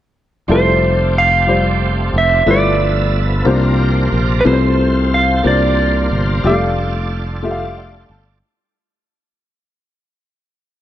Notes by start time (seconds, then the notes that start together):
0.48 F1 F3 G3 A3 C4 E4 F4 G4 A4 C5
1.18 F5
1.47 G3 F4 G4 C5
2.14 F1 E5
2.46 G1 G2 F3 A3 B3 E4 F4 A4 B4 E5
2.51 D5
3.45 C2 C3 F3 A#3 C4 D4 F4 A#4 C5
4.13 A#1
4.41 A3 B4
4.45 C2 C3 G#3 C4 F4 B4 C5
4.52 A3 C5
5.14 F5
5.43 C2 C3 A#3 D4 F4 C5 D5
6.11 G1
6.43 F1 G3 D4 F4 G4 A4 D5 F5
6.50 A3
7.43 A3 F4 G4 E5
7.51 F5
7.78 F5
8.10 G1 A5